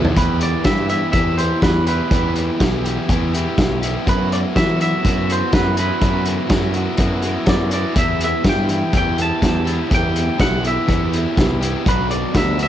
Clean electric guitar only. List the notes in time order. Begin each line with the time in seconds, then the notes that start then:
0.18 B4
0.43 D5
0.65 E5
0.90 E5
1.12 E5
1.38 C5
1.63 B4
1.88 B4
4.09 B4
4.33 D5
4.57 E5
4.82 E5
5.32 C5
5.54 B4
5.79 B4
7.50 D5
7.74 D5
7.99 E5
8.24 E5
8.49 G5
8.97 G5
9.22 A5
9.94 G5
10.41 F#5
10.67 E5
11.89 B4
12.11 D5
12.37 E5
12.63 E5